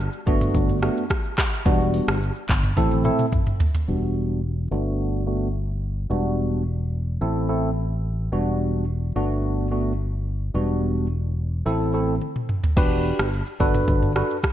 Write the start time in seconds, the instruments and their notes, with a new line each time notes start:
0.00 shaker
0.13 shaker
0.26 fingered electric bass G1, tine electric piano A3 B3 D4 F#4, kick, shaker
0.41 mid tom, shaker
0.55 fingered electric bass G1, kick, shaker
0.69 mid tom, shaker
0.82 tine electric piano A3 B3 D4 F#4, cross-stick, shaker
0.97 shaker
1.09 kick, cross-stick, shaker
1.24 shaker
1.38 kick, cross-stick, clap, shaker
1.53 shaker
1.65 fingered electric bass E1, tine electric piano G3 B3 D4 F#4, kick, shaker
1.80 shaker
1.94 open hi-hat, shaker
2.08 fingered electric bass G1, cross-stick, shaker
2.22 shaker
2.35 shaker
2.49 fingered electric bass G1, kick, clap, shaker
2.64 mid tom, shaker
2.77 fingered electric bass A1, tine electric piano A3 C4 E4 A4, kick, high tom, shaker
2.91 high tom, shaker
3.04 tine electric piano A3 C4 E4 A4, mid tom, shaker
3.19 mid tom, shaker
3.32 kick, mid tom, shaker
3.46 mid tom, shaker
3.60 floor tom, shaker
3.75 floor tom, shaker
3.88 fingered electric bass E1, tine electric piano G3 B3 D4 F#4
4.71 fingered electric bass G1, tine electric piano A3 B3 D4 F#4
5.27 tine electric piano A3 B3 D4 F#4
6.10 fingered electric bass E1, tine electric piano G3 B3 D4 F#4
7.21 fingered electric bass A1, tine electric piano A3 C4 E4 A4
7.49 tine electric piano A3 C4 E4 A4
8.32 fingered electric bass E1, tine electric piano G3 B3 D4 F#4
9.15 fingered electric bass G1, tine electric piano A3 B3 D4 F#4
9.71 tine electric piano A3 B3 D4 F#4
10.54 fingered electric bass E1, tine electric piano G3 B3 D4 F#4
11.66 fingered electric bass A1, tine electric piano A3 C4 E4 A4
11.93 tine electric piano A3 C4 E4 A4
12.21 high tom
12.36 mid tom
12.49 mid tom
12.64 floor tom
12.77 fingered electric bass E1, tine electric piano D4 F#4 G4 B4, kick, crash, shaker
12.91 shaker
13.05 shaker
13.19 fingered electric bass G1, cross-stick, shaker
13.33 shaker
13.46 shaker
13.60 fingered electric bass G1, tine electric piano D4 F#4 A4 B4, kick, shaker
13.74 mid tom, shaker
13.88 fingered electric bass G1, kick, shaker
14.02 mid tom, shaker
14.15 tine electric piano D4 F#4 A4 B4, cross-stick, shaker
14.30 shaker
14.43 kick, cross-stick, shaker